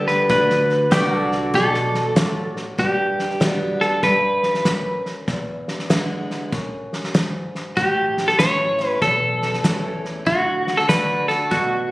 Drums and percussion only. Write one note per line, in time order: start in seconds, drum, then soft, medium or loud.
0.08 snare soft
0.30 kick loud
0.30 snare soft
0.50 snare soft
0.70 snare soft
0.92 kick medium
0.92 snare loud
0.92 hi-hat pedal medium
1.32 snare soft
1.54 kick loud
1.54 snare soft
1.74 snare soft
1.94 snare soft
2.16 kick medium
2.16 snare loud
2.16 hi-hat pedal medium
2.56 snare soft
2.78 kick loud
2.78 snare soft
3.19 snare soft
3.30 snare soft
3.41 kick medium
3.41 snare loud
3.41 hi-hat pedal medium
3.81 snare soft
4.03 kick medium
4.03 snare soft
4.43 snare soft
4.54 snare soft
4.65 kick medium
4.65 snare medium
4.65 hi-hat pedal medium
5.06 snare soft
5.28 kick loud
5.28 snare soft
5.68 snare soft
5.79 snare soft
5.90 kick medium
5.90 snare loud
5.90 hi-hat pedal medium
6.30 snare soft
6.53 kick medium
6.53 snare soft
6.93 snare soft
7.04 snare soft
7.15 kick medium
7.15 snare loud
7.15 hi-hat pedal medium
7.55 snare soft
7.77 kick loud
7.77 snare soft
8.18 snare soft
8.29 snare soft
8.39 kick medium
8.39 snare loud
8.39 hi-hat pedal medium
8.80 snare soft
9.02 kick medium
9.02 snare soft
9.42 snare soft
9.53 snare soft
9.64 kick medium
9.64 snare medium
9.64 hi-hat pedal medium
10.05 snare soft
10.27 kick medium
10.27 snare soft
10.67 snare soft
10.78 snare soft
10.89 kick medium
10.89 snare medium
10.89 hi-hat pedal medium
11.30 snare soft
11.51 kick medium
11.51 snare soft